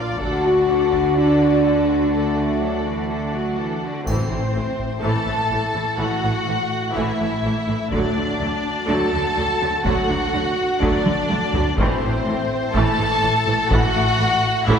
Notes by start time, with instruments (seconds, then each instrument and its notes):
Already playing: double bass section A#1, cello section A#2, viola section F4, violin section D5 F5
0.20 double bass section D2, cello section D3, viola section D4, french horn section F#4, violin section A4 F#5, taiko
0.44 violin section F#4 D5, viola section F#4
0.69 viola section D4, violin section A4 F#5
0.93 viola section F#4, violin section F#4 D5, taiko
1.16 french horn section D4, viola section D4, violin section A4 F#5
1.41 viola section F#4, violin section F#4 D5
1.65 viola section D4, violin section A4 F#5
1.89 viola section F#4, violin section F#4 D5
2.13 french horn section A3, viola section D4, violin section A4 F#5
2.37 viola section F#4, violin section F#4 D5
2.61 cello section F#3, viola section D4, violin section A4 F#5
2.85 cello section E3, violin section F#4 D5, viola section F#4
3.09 cello section D3, viola section D4, violin section A4 F#5
3.34 cello section F#3, viola section F#4, violin section F#4 D5
3.58 cello section E3, viola section D4, violin section A4 F#5
3.82 cello section D3, violin section F#4 D5, viola section F#4
4.05 double bass section A1, cello section A2, timpani A2, viola section E3 A3, french horn section A3 E4, violin section C4 C5, taiko, triangle
4.30 double bass section A1, cello section A2, viola section E3 A3
4.54 double bass section A1, cello section A2, viola section E3 A3
4.79 taiko
5.02 double bass section A1, cello section A2, viola section E3 A3, violin section A4 A5
5.26 double bass section A1, cello section A2, viola section E3 A3
5.51 double bass section A1, cello section A2, viola section E3 A3
5.74 double bass section A1, cello section A2, viola section E3 A3
5.98 double bass section A1, cello section A2, viola section E3 A3, violin section F#4 F#5
6.23 double bass section A1, cello section A2, viola section E3 A3
6.47 double bass section A1, cello section A2, viola section E3 A3
6.94 double bass section A1, cello section A2, viola section E3 A3, violin section E4 E5
7.19 double bass section A1, cello section A2, viola section E3 A3
7.43 double bass section A1, cello section A2, viola section E3 A3
7.67 double bass section A1, cello section A2, viola section E3 A3
7.91 double bass section D2, cello section D3, viola section F#3 A3, french horn section A3 F#4, violin section D4 D5, taiko
8.16 double bass section D2, cello section D3, viola section F#3 A3
8.40 double bass section D2, cello section D3, viola section F#3 A3
8.89 double bass section D2, cello section D3, viola section F#3 A3, violin section A4 A5
9.13 double bass section D2, cello section D3, viola section F#3 A3
9.37 double bass section D2, cello section D3, viola section F#3 A3
9.61 double bass section D2, cello section D3, viola section F#3 A3
9.84 double bass section D2, cello section D3, viola section F#3 A3, violin section F#4 F#5, taiko
10.09 double bass section D2, cello section D3, viola section F#3 A3
10.33 double bass section D2, cello section D3, viola section F#3 A3
10.80 double bass section D2, cello section D3, viola section F#3 A3, violin section D4 D5, taiko
11.05 double bass section D2, cello section D3, viola section F#3 A3, taiko high
11.29 double bass section D2, cello section D3, viola section F#3 A3, taiko high
11.53 double bass section D2, cello section D3, viola section F#3 A3, taiko low
11.77 double bass section A1, cello section A2, viola section E3 A3, french horn section A3 E4, violin section C4 C5, taiko
12.02 double bass section A1, cello section A2, viola section E3 A3
12.26 double bass section A1, cello section A2, viola section E3 A3
12.73 double bass section A1, cello section A2, viola section E3 A3, violin section A4 A5, taiko
12.99 double bass section A1, cello section A2, viola section E3 A3
13.22 double bass section A1, cello section A2, viola section E3 A3
13.46 double bass section A1, cello section A2, viola section E3 A3
13.70 double bass section A1, cello section A2, viola section E3 A3, violin section F#4 F#5, taiko
13.95 double bass section A1, cello section A2, viola section E3 A3
14.19 double bass section A1, cello section A2, viola section E3 A3
14.67 double bass section A1, cello section A2, viola section E3 A3, violin section E4 E5, taiko